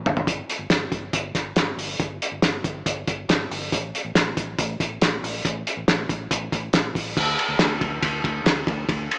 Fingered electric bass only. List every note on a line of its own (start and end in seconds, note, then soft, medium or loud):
0.05 0.41 G1 medium
0.59 0.68 G1 loud
0.70 0.88 G1 loud
0.91 1.09 G1 medium
1.13 1.31 G1 loud
1.35 1.53 G1 medium
1.56 1.74 G1 medium
1.77 1.95 G1 loud
2.00 2.17 G1 loud
2.32 2.41 G1 medium
2.43 2.61 G1 loud
2.64 2.82 G1 medium
2.86 3.04 G1 loud
3.08 3.25 G1 loud
3.28 3.46 G1 loud
3.51 3.68 G1 medium
3.73 3.90 A1 loud
4.05 4.13 A1 medium
4.15 4.33 A1 loud
4.37 4.55 A1 medium
4.58 4.76 A1 loud
4.80 4.98 A1 loud
5.01 5.19 A1 medium
5.23 5.41 A1 loud
5.45 5.62 A1 loud
5.77 5.86 A1 loud
5.88 6.05 A1 loud
6.09 6.27 A1 medium
6.31 6.48 A1 loud
6.53 6.70 A1 loud
6.73 6.91 A1 medium
6.95 7.13 A1 loud
7.17 7.34 D2 loud
7.49 7.58 D2 medium
7.59 7.77 D2 loud
7.81 7.99 D2 loud
8.02 8.20 D2 loud
8.24 8.42 D2 loud
8.44 8.62 D2 loud
8.67 8.85 D2 loud
8.89 9.06 D2 loud